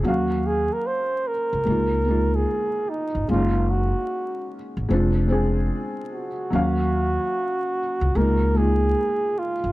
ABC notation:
X:1
M:4/4
L:1/16
Q:"Swing 16ths" 1/4=74
K:Ebdor
V:1 name="Flugelhorn"
G2 A B c2 B4- B A3 E2 | F2 G4 z8 G2- | G8 B2 A4 F2 |]
V:2 name="Felt piano"
[G,B,Df]6 z2 [A,B,EF]2 [A,B,EF]4 z2 | [A,B,DE]6 z2 [A,C=DF]2 [A,CDA]4 z2 | [G,B,Df]6 z2 [A,B,EF]2 [A,B,EF]4 z2 |]
V:3 name="Upright bass" clef=bass
E,,3 z4 D,, D,,4 z3 =G,,, | G,,,3 z4 A,,, F,,,4 z4 | E,,3 z4 D,, D,,4 z3 =G,,, |]